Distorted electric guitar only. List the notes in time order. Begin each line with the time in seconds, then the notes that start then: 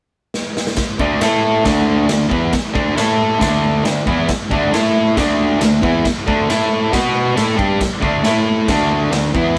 0.99 D3 A3 D4
1.21 A3 E4 A4
1.65 D3 A3 D4
2.08 D3 A3
2.30 E3 B3 E4
2.74 D3 A3 D4
2.96 A3 E4 A4
3.39 D3 A3 D4
3.85 D3 A3
4.06 E3 B3 E4
4.50 D3 A3 D4
4.72 A3 E4 A4
5.16 D3 A3 D4
5.60 D3 A3
5.82 E3 B3 E4
6.26 D3 A3 D4
6.49 A3 E4 A4
6.92 B3 F#4 B4
7.35 A3 E4 A4
7.56 G3 D4 G4
8.00 D3 A3 D4
8.23 A3 E4 A4
8.68 D3 A3 D4
9.12 D3 A3
9.34 E3 B3 E4